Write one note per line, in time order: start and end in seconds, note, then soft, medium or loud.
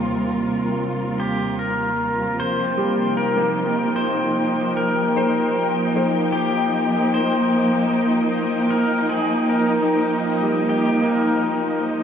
0.00 2.39 D#2 medium
0.00 4.25 C3 medium
0.00 2.39 G3 medium
0.00 4.35 F4 medium
0.00 4.18 A#4 medium
0.00 0.17 C5 medium
1.20 1.60 G4 medium
1.59 2.39 A#4 medium
2.38 12.03 F3 medium
2.38 3.17 C5 loud
2.63 11.86 G5 medium
2.71 12.03 A#3 medium
2.77 3.52 G3 medium
3.01 12.03 D#4 medium
3.17 3.96 A#4 medium
3.37 6.67 A#3 medium
3.96 4.76 C5 medium
4.77 6.39 A#4 medium
5.17 5.94 C5 medium
5.96 9.26 C5 medium
6.32 7.14 G4 medium
7.14 8.70 C5 medium
8.71 9.11 A#4 medium
9.09 9.46 G#4 medium
9.49 10.69 A#4 medium
10.42 11.17 G3 medium
10.69 11.09 G4 medium
11.02 12.03 A#3 medium
11.10 11.83 A#4 medium